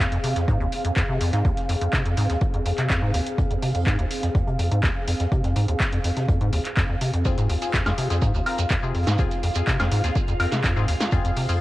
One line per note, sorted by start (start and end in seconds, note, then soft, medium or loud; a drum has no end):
0.00 11.61 C4 medium
0.00 11.61 G#4 medium
0.00 11.61 F5 medium
0.00 snare loud
0.12 0.18 F2 medium
0.12 closed hi-hat medium
0.23 0.34 C3 medium
0.23 closed hi-hat medium
0.23 open hi-hat loud
0.36 0.46 F2 medium
0.36 snare soft
0.36 closed hi-hat medium
0.48 0.58 G#2 loud
0.48 kick loud
0.48 closed hi-hat medium
0.60 0.67 D#2 medium
0.60 closed hi-hat soft
0.72 closed hi-hat medium
0.72 open hi-hat loud
0.85 0.91 F2 medium
0.85 closed hi-hat medium
0.96 1.03 F2 medium
0.96 kick loud
0.96 snare loud
0.96 clap loud
0.96 closed hi-hat medium
1.09 1.18 C3 medium
1.20 1.31 F2 medium
1.20 closed hi-hat medium
1.20 open hi-hat loud
1.33 1.43 G#2 loud
1.33 snare soft
1.33 closed hi-hat medium
1.45 1.52 D#2 medium
1.45 kick loud
1.45 closed hi-hat medium
1.57 snare soft
1.57 closed hi-hat medium
1.69 1.76 F2 medium
1.69 closed hi-hat medium
1.69 open hi-hat loud
1.81 1.88 F2 medium
1.81 closed hi-hat medium
1.93 2.03 C3 medium
1.93 kick loud
1.93 snare loud
1.93 clap loud
1.93 closed hi-hat medium
2.05 2.15 F2 medium
2.05 closed hi-hat medium
2.16 2.27 G#2 loud
2.16 closed hi-hat medium
2.16 open hi-hat loud
2.30 2.36 D#2 medium
2.30 snare medium
2.30 closed hi-hat medium
2.41 kick loud
2.41 closed hi-hat medium
2.54 2.60 F2 medium
2.54 closed hi-hat soft
2.66 2.72 F2 medium
2.66 closed hi-hat medium
2.66 open hi-hat loud
2.78 2.88 C3 medium
2.78 clap soft
2.78 closed hi-hat medium
2.90 3.00 F2 medium
2.90 kick loud
2.90 snare loud
2.90 clap loud
2.90 closed hi-hat medium
3.02 3.12 G#2 loud
3.14 3.21 D#2 medium
3.14 closed hi-hat medium
3.14 open hi-hat loud
3.26 closed hi-hat medium
3.26 closed hi-hat soft
3.38 3.45 F2 medium
3.38 kick loud
3.38 closed hi-hat medium
3.51 3.57 F2 medium
3.51 closed hi-hat soft
3.62 3.73 C3 medium
3.62 open hi-hat loud
3.62 open hi-hat medium
3.75 3.85 F2 medium
3.75 closed hi-hat medium
3.87 3.97 G#2 loud
3.87 kick loud
3.87 snare loud
3.87 clap loud
3.87 closed hi-hat medium
3.99 4.06 D#2 medium
3.99 closed hi-hat soft
4.11 closed hi-hat medium
4.11 open hi-hat loud
4.23 4.30 F2 medium
4.23 snare soft
4.23 closed hi-hat medium
4.35 4.42 F2 medium
4.35 kick loud
4.35 closed hi-hat medium
4.47 4.57 C3 medium
4.47 closed hi-hat soft
4.59 4.69 F2 medium
4.59 closed hi-hat medium
4.59 open hi-hat loud
4.72 4.81 G#2 loud
4.72 closed hi-hat medium
4.83 4.90 D#2 medium
4.83 kick loud
4.83 snare loud
4.83 clap loud
4.83 closed hi-hat medium
5.08 5.14 F2 medium
5.08 closed hi-hat medium
5.08 open hi-hat loud
5.20 5.27 F2 medium
5.20 snare soft
5.20 closed hi-hat medium
5.32 5.42 C3 medium
5.32 kick loud
5.32 closed hi-hat medium
5.44 5.54 F2 medium
5.44 snare soft
5.44 closed hi-hat soft
5.56 5.66 G#2 loud
5.56 closed hi-hat medium
5.56 open hi-hat loud
5.68 5.75 D#2 medium
5.68 closed hi-hat medium
5.80 kick loud
5.80 snare loud
5.80 clap loud
5.80 closed hi-hat medium
5.93 5.99 F2 medium
5.93 closed hi-hat medium
6.04 6.11 F2 medium
6.04 closed hi-hat medium
6.04 open hi-hat loud
6.17 6.27 C3 medium
6.17 snare medium
6.17 closed hi-hat medium
6.29 6.39 F2 medium
6.29 kick loud
6.29 closed hi-hat loud
6.41 6.51 G#2 loud
6.41 closed hi-hat soft
6.53 6.60 D#2 medium
6.53 closed hi-hat medium
6.53 open hi-hat loud
6.65 clap soft
6.65 closed hi-hat medium
6.77 6.84 F2 medium
6.77 kick loud
6.77 snare loud
6.77 clap loud
6.77 closed hi-hat medium
6.89 6.96 F2 medium
7.01 7.11 C3 medium
7.01 closed hi-hat medium
7.01 open hi-hat loud
7.13 7.23 F2 medium
7.13 closed hi-hat medium
7.13 closed hi-hat soft
7.25 7.36 F2 medium
7.25 7.59 C4 medium
7.25 7.59 F4 medium
7.25 7.59 G#4 medium
7.25 11.61 F5 medium
7.25 kick loud
7.25 closed hi-hat medium
7.25 shekere medium
7.38 7.48 G#2 loud
7.38 closed hi-hat soft
7.38 shekere soft
7.49 7.56 D#2 medium
7.49 open hi-hat medium
7.49 open hi-hat loud
7.62 7.75 C4 medium
7.62 7.75 F4 medium
7.62 7.75 G#4 medium
7.62 closed hi-hat medium
7.62 shekere medium
7.74 7.81 F2 medium
7.74 kick loud
7.74 snare loud
7.74 clap loud
7.74 closed hi-hat medium
7.74 shekere medium
7.86 7.93 F2 medium
7.86 8.07 C4 medium
7.86 8.07 F4 medium
7.86 8.07 G#4 medium
7.86 snare medium
7.86 closed hi-hat soft
7.86 high woodblock medium
7.86 shekere soft
7.98 8.08 C3 medium
7.98 closed hi-hat medium
7.98 open hi-hat loud
8.10 8.20 F2 medium
8.10 8.23 C4 medium
8.10 8.23 F4 medium
8.10 8.23 G#4 medium
8.10 snare soft
8.10 closed hi-hat medium
8.10 shekere medium
8.22 8.32 G#2 loud
8.22 kick loud
8.22 closed hi-hat medium
8.22 shekere medium
8.34 8.41 D#2 medium
8.34 closed hi-hat soft
8.34 shekere soft
8.46 8.59 C4 medium
8.46 8.59 F4 medium
8.46 8.59 A#4 medium
8.46 closed hi-hat medium
8.46 open hi-hat loud
8.46 high woodblock medium
8.58 8.65 F2 medium
8.58 closed hi-hat medium
8.58 shekere medium
8.70 8.77 F2 medium
8.70 kick loud
8.70 snare loud
8.70 clap loud
8.70 closed hi-hat loud
8.70 shekere medium
8.83 8.93 C3 medium
8.83 8.96 C4 medium
8.83 8.96 F4 medium
8.83 8.96 G#4 loud
8.83 shekere soft
8.94 9.05 F2 medium
8.94 closed hi-hat medium
8.94 open hi-hat loud
9.07 9.17 G#2 loud
9.07 snare soft
9.07 snare medium
9.07 closed hi-hat medium
9.07 shekere medium
9.18 9.26 D#2 medium
9.18 9.53 C4 medium
9.18 9.53 F4 medium
9.18 9.53 G#4 medium
9.18 kick loud
9.18 closed hi-hat loud
9.18 shekere medium
9.31 snare soft
9.31 closed hi-hat soft
9.31 shekere soft
9.43 9.50 F2 medium
9.43 closed hi-hat medium
9.43 open hi-hat loud
9.54 9.62 F2 medium
9.54 9.68 C4 medium
9.54 9.68 F4 medium
9.54 9.68 G#4 medium
9.54 closed hi-hat medium
9.54 shekere medium
9.67 9.78 C3 medium
9.67 kick loud
9.67 snare loud
9.67 clap loud
9.67 closed hi-hat medium
9.67 shekere medium
9.79 9.89 F2 medium
9.79 10.00 C4 medium
9.79 10.00 F4 medium
9.79 10.00 G#4 medium
9.79 snare medium
9.79 closed hi-hat medium
9.79 high woodblock medium
9.79 shekere soft
9.91 10.02 G#2 loud
9.91 closed hi-hat medium
9.91 open hi-hat loud
10.04 10.10 D#2 medium
10.04 10.16 C4 medium
10.04 10.16 F4 medium
10.04 10.16 G#4 medium
10.04 snare medium
10.04 closed hi-hat medium
10.04 shekere medium
10.15 kick loud
10.15 closed hi-hat medium
10.15 shekere medium
10.28 10.35 F2 medium
10.28 closed hi-hat soft
10.28 shekere soft
10.40 10.47 F2 medium
10.40 10.53 C4 medium
10.40 10.53 F4 medium
10.40 10.53 A#4 medium
10.40 closed hi-hat medium
10.40 open hi-hat loud
10.40 high woodblock medium
10.52 10.62 C3 medium
10.52 snare medium
10.52 clap soft
10.52 closed hi-hat medium
10.52 shekere medium
10.64 10.74 F2 medium
10.64 kick loud
10.64 snare loud
10.64 clap loud
10.64 closed hi-hat medium
10.64 shekere medium
10.77 10.86 G#2 loud
10.77 10.89 C4 medium
10.77 10.89 F4 medium
10.77 10.89 G#4 loud
10.77 shekere soft
10.88 10.95 D#2 medium
10.88 closed hi-hat medium
10.88 open hi-hat loud
11.01 snare medium
11.01 closed hi-hat medium
11.01 closed hi-hat soft
11.01 shekere medium
11.12 11.19 F2 medium
11.12 11.46 C4 medium
11.12 11.46 F4 medium
11.12 11.46 G#4 medium
11.12 kick loud
11.12 closed hi-hat loud
11.12 shekere medium
11.25 11.31 F2 medium
11.25 closed hi-hat medium
11.25 shekere soft
11.36 11.47 C3 medium
11.36 open hi-hat medium
11.36 open hi-hat loud
11.49 11.59 F2 medium
11.49 11.61 C4 medium
11.49 11.61 F4 medium
11.49 11.61 G#4 medium
11.49 closed hi-hat medium
11.49 shekere medium